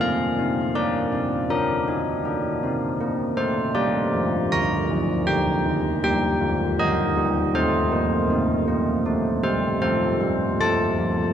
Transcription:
Already playing: A4
0.01 A#3 F5
0.39 C4
0.75 A#3 A#4 D5
1.12 C4
1.50 D4 A#4
1.88 D#4
2.25 D4
2.63 C4
3.01 A#3
3.37 A3 C5
3.75 G3 A#4 D5
4.14 F3
4.52 D3 A#5
4.90 D#3
5.27 D3 G5
5.66 D#3
6.03 G3 G5
6.41 F3
6.79 D#3 A#4 D#5
7.17 G3
7.55 A3 C5
7.92 A#3
8.30 C4
8.68 A#3
9.06 A3
9.43 G3 C5
9.82 F3 A4 C5
10.21 G3
10.61 A3 A5
10.99 F3

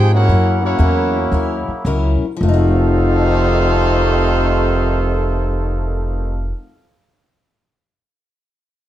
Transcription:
Already playing: G#2 C3 F3 C4 D#4 G#4 C5 G5
0.11 A#3 C#4 E4 F#4 A#4 C#5
0.15 F#5
0.27 F#2 C#3 F#3 A#3 C#4 E4
0.31 A#4
0.62 A#3 C#4 E4 F#4 A#4 C#5 F#5
0.79 E2 F#3 C#4 E4 A#4
1.32 D#2 F#3 C#4 E4 A#4
1.68 muted upright bass stroke
1.85 C#2 F#3 C#4 E4 A#4
2.22 muted upright bass stroke
2.37 F2 C3 D#3 F3 A3
2.41 F1 D#3 A3 D#4 A4 C5 F5
2.49 D#4
2.54 F#4

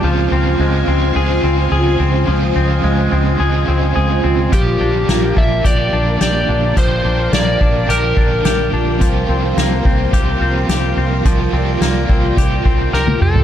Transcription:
0.02 C#2 C#3 F3 G#3 C4 F4 C5 F5 G#5
0.32 C#2 C4
0.58 C#2 C#3 G#3
0.62 C4 F4
0.87 C#2 C4
1.13 C#2 C#3 G#3 G#4
1.19 C4 F4
1.43 C#2 C4
1.72 C#2 G#4
2.00 C#2 C4
2.25 C#2 C#3 F3 G#3 D#5
2.31 C4 F4
2.56 C#2 C4
2.84 C#2 G#3
3.12 C#2 C4
3.38 C#2 C#3 G#3 G#4
3.44 C4 F4
3.68 C#2 C4
3.96 C#2 G#4
4.24 C#2 C4
4.51 A#1 A#2 D3 F3 A#3 D4 G4 A#4 D5 G5, kick, closed hi-hat
4.81 A#1 D4
5.07 A#1 F3 A#3 D4, snare, closed hi-hat
5.13 G4
5.37 A#1 D4 E5, kick
5.62 A#1 A#2 D3 F3 G4 D5, kick, closed hi-hat
5.68 A#3 D4 G4
5.93 A#1 D4
6.21 A#1 G4 D5, snare, closed hi-hat
6.49 A#1 D4
6.76 A#1 A#2 D3 F3 A#3 D4 G4 C5, kick, closed hi-hat
7.03 A#1 A#3 D4 G4
7.08 F3
7.33 A#1 A#3 D5, snare, closed hi-hat
7.61 A#1 D4, kick
7.86 A#1 A#2 D3 G4, closed hi-hat
7.90 F3 A#3 D4 A#4
7.95 G4
8.17 D4, kick
8.45 A#1 G4, snare, closed hi-hat
8.73 A#1 D4
8.98 C2 C3 F3 A#4 C5 G5, kick, closed hi-hat
9.03 A#3 F4 G4
9.29 C2 C4
9.57 C2 A#3, snare, closed hi-hat
9.85 C2 C4, kick
10.11 C2 C3 F3 G4, kick, closed hi-hat
10.15 A#3 F4 G4
10.41 C2 C4
10.69 C2 G4, snare, closed hi-hat
10.97 C2 C4
11.24 C2 C3 F3 A#3 F4 G4 D5, kick, closed hi-hat
11.52 C2 C4 F4 G4
11.57 A#3
11.80 C2 F3 A#3 F4, snare, closed hi-hat
11.85 G4
12.09 C2 C4, kick
12.35 C2 C3 F3 G4, kick, closed hi-hat
12.39 A#3 F4 G4
12.65 C2 C4, kick
12.93 C2 G4 A#4, snare
13.08 high tom
13.21 C2 C4 A4, mid tom
13.36 floor tom

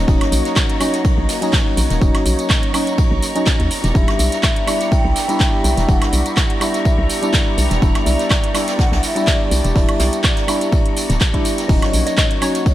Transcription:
Already playing: A#3 C#4 D#4 F#4 D#5 A#5 C#6
0.07 D#1 F#3 C#4 D#4 C#5, kick, ride, tambourine
0.21 snare, closed hi-hat, high woodblock
0.32 A#1, open hi-hat, ride, tambourine
0.45 snare, closed hi-hat, tambourine
0.56 kick, snare, clap, ride, tambourine, high woodblock
0.70 closed hi-hat
0.80 F#3 C#4 D#4, open hi-hat, ride, tambourine, high woodblock
0.93 snare, closed hi-hat, tambourine
1.04 kick, ride, tambourine
1.18 A#1
1.29 snare, open hi-hat, tambourine
1.41 F#3 C#4 D#4, closed hi-hat, tambourine
1.53 kick, snare, clap, ride, tambourine
1.77 A#1, open hi-hat, ride, tambourine
1.90 D#1, snare, closed hi-hat, tambourine
2.01 D#1 F#3 C#4 D#4, kick, ride, tambourine
2.15 snare, closed hi-hat, high woodblock
2.25 A#1, open hi-hat, ride, tambourine
2.39 closed hi-hat, tambourine
2.50 kick, snare, clap, ride, tambourine, high woodblock
2.63 closed hi-hat
2.73 F#3 C#4 D#4, open hi-hat, ride, tambourine, high woodblock
2.86 closed hi-hat, ride, tambourine
2.98 kick, ride, tambourine
3.11 A#1
3.22 open hi-hat, ride, tambourine
3.35 F#3 C#4 D#4, closed hi-hat, tambourine
3.46 kick, snare, clap, ride, tambourine
3.60 D#2, closed hi-hat, ride
3.71 B3 D4 E4 G4 D5, open hi-hat, ride, tambourine
3.82 E1 G4 B5, snare, closed hi-hat, tambourine
3.94 E1 G3 D4 E4, kick, ride, tambourine
4.08 E5, snare, closed hi-hat, high woodblock
4.18 B1 E5, open hi-hat, ride, tambourine
4.32 snare, closed hi-hat, tambourine
4.43 kick, snare, clap, ride, tambourine, high woodblock
4.56 closed hi-hat
4.67 G3 D4 E4, open hi-hat, ride, tambourine, high woodblock
4.80 snare, closed hi-hat, tambourine
4.92 G5, kick, ride, tambourine
5.05 B1
5.15 snare, open hi-hat, tambourine
5.28 G3 D4 E4, closed hi-hat, tambourine
5.40 kick, snare, clap, ride, tambourine
5.64 B1, open hi-hat, ride, tambourine
5.77 E1, snare, closed hi-hat, tambourine
5.88 E1 G3 D4 E4 F#5, kick, ride, tambourine
6.02 snare, closed hi-hat, high woodblock
6.13 B1, open hi-hat, ride, tambourine
6.26 closed hi-hat, tambourine
6.37 kick, snare, clap, ride, tambourine, high woodblock
6.50 closed hi-hat
6.60 G3 D4 E4 E5, open hi-hat, ride, tambourine, high woodblock
6.74 snare, closed hi-hat, tambourine
6.85 kick, ride, tambourine
6.98 B1
7.10 open hi-hat, ride, tambourine
7.22 G3 D4 E4, closed hi-hat, tambourine
7.33 kick, snare, clap, ride, tambourine
7.47 ride
7.57 B1, open hi-hat, ride, tambourine
7.71 E1, snare, closed hi-hat, tambourine
7.81 E1 G3 D4 E4, kick, ride, tambourine
7.95 snare, closed hi-hat, high woodblock
8.00 E5
8.06 B1 D5 A5, open hi-hat, ride, tambourine
8.19 snare, closed hi-hat, tambourine
8.30 kick, snare, clap, ride, tambourine, high woodblock
8.44 closed hi-hat
8.54 G3 D4 E4, snare, open hi-hat, ride, tambourine, high woodblock
8.68 snare, closed hi-hat, ride, tambourine
8.79 F#5, kick, snare, ride, tambourine
8.92 B1, snare, ride
9.03 E5, snare, open hi-hat, tambourine
9.15 G3 D4 E4, closed hi-hat, tambourine
9.27 D5, kick, snare, clap, ride, tambourine
9.51 B1, open hi-hat, ride, tambourine
9.64 E1, closed hi-hat, tambourine
9.75 E1 G3 D4 E4 D5, kick, snare, open hi-hat, tambourine
9.89 closed hi-hat, high woodblock
9.99 B1, snare, open hi-hat, ride, tambourine
10.13 closed hi-hat, tambourine
10.24 kick, clap, tambourine, high woodblock
10.36 snare, closed hi-hat
10.47 G3 D4 E4, open hi-hat, ride, tambourine, high woodblock
10.61 closed hi-hat, ride, tambourine
10.72 kick, ride, tambourine
10.86 closed hi-hat
10.97 open hi-hat, ride, tambourine
11.10 D1, snare, closed hi-hat, tambourine
11.20 kick, snare, clap, ride, tambourine
11.33 G3 D4 E4, kick, closed hi-hat, ride
11.44 open hi-hat, ride, tambourine
11.58 snare, closed hi-hat, tambourine
11.68 D#1 F#3 A#3 C#4 D#4 F#4 C#5 C#6, kick, ride, tambourine, crash
11.82 snare, closed hi-hat, high woodblock
11.93 A#1 A#5, open hi-hat, ride, tambourine
12.00 F#4
12.06 D#5, snare, closed hi-hat, tambourine
12.13 D#5
12.17 D#5, kick, snare, clap, ride, tambourine, high woodblock
12.31 closed hi-hat
12.41 F#3 C#4 D#4 C#5, open hi-hat, ride, tambourine, high woodblock
12.54 snare, closed hi-hat, tambourine
12.66 kick, ride, tambourine

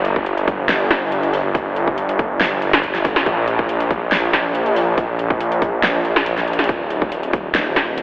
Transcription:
Already playing: G1
0.05 closed hi-hat
0.16 kick
0.26 closed hi-hat
0.38 closed hi-hat
0.48 kick, closed hi-hat
0.69 snare, closed hi-hat
0.91 kick, snare, closed hi-hat
1.12 closed hi-hat
1.23 closed hi-hat
1.33 open hi-hat
1.55 kick, closed hi-hat
1.76 closed hi-hat
1.88 kick
1.98 closed hi-hat
2.09 closed hi-hat
2.19 kick, closed hi-hat
2.41 snare, closed hi-hat
2.62 closed hi-hat
2.73 snare
2.83 kick, closed hi-hat
2.95 snare, closed hi-hat
3.05 kick, open hi-hat
3.16 snare
3.26 A#1, kick, closed hi-hat
3.48 closed hi-hat
3.59 kick
3.69 closed hi-hat
3.80 closed hi-hat
3.91 kick, closed hi-hat
4.12 snare, closed hi-hat
4.33 kick, snare, closed hi-hat
4.55 closed hi-hat
4.66 closed hi-hat
4.76 open hi-hat
4.98 kick, closed hi-hat
5.19 closed hi-hat
5.30 kick
5.41 closed hi-hat
5.52 closed hi-hat
5.62 kick, closed hi-hat
5.83 snare, closed hi-hat
6.05 closed hi-hat
6.16 snare
6.26 closed hi-hat
6.38 snare, closed hi-hat
6.48 closed hi-hat
6.53 closed hi-hat
6.59 snare, closed hi-hat
6.64 closed hi-hat
6.69 D#1, kick, closed hi-hat
6.90 closed hi-hat
7.02 kick
7.12 closed hi-hat
7.23 closed hi-hat
7.33 kick, closed hi-hat
7.55 snare, closed hi-hat
7.76 kick, snare, closed hi-hat
7.98 closed hi-hat

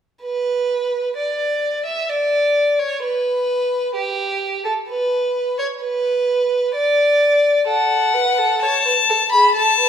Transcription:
0.23 B4
1.17 D5
1.86 E5
2.10 D5
2.79 C#5
3.03 B4
3.95 G4
4.65 A4
4.89 B4
5.59 C#5
5.82 B4
6.75 D5
7.67 A4 F#5
8.14 B4
8.38 A4
8.62 C#5 A5
8.86 B4
9.09 A4
9.32 G#4 B5
9.54 A4 A5
9.79 B4

